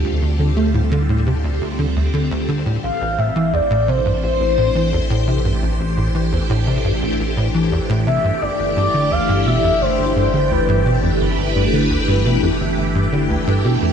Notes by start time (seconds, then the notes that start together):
Already playing: D2 D3 G3 C4 F4 A4
0.04 D2
0.22 D2
0.39 D3
0.57 A3
0.74 A2
0.92 D3
1.09 A2
1.26 C3
1.44 D2
1.61 D2
1.79 D3
1.96 D2
2.14 D3
2.31 D2
2.48 D3
2.66 A2
2.83 A1 E3 F5
2.98 A1 A3
3.18 A2 E5
3.31 C5
3.36 E3 D4
3.53 E2 D5
3.70 A2
3.88 C3 C5
4.06 G2
4.23 A1 C5
4.40 A1
4.58 A2
4.75 E3
4.93 E2
5.06 A2 G4
5.28 C3
5.45 G2
5.62 A1
5.80 A1
5.97 A2
6.15 E3
6.32 E2
6.50 A2
6.67 C3
6.84 G2
7.02 A1
7.20 A1
7.37 A2
7.54 E3
7.72 E2
7.89 A2
8.07 C3 E5
8.24 G2
8.42 G1 D5
8.59 G1
8.76 G2 D5
8.94 D3
9.11 D2 F5
9.29 G2
9.46 B2 E5
9.64 F2
9.81 G1 C5
9.99 G1
10.16 G2
10.34 D3
10.51 D2 B4
10.68 G2
10.86 B2
10.93 B4
11.03 F2
11.21 G1
11.38 G1
11.56 G2
11.73 D3
11.90 D2
12.08 G2
12.25 B2
12.43 F2
12.60 G1
12.78 G1
12.95 G2
13.12 D3
13.30 D2
13.47 G2
13.65 B2
13.82 F2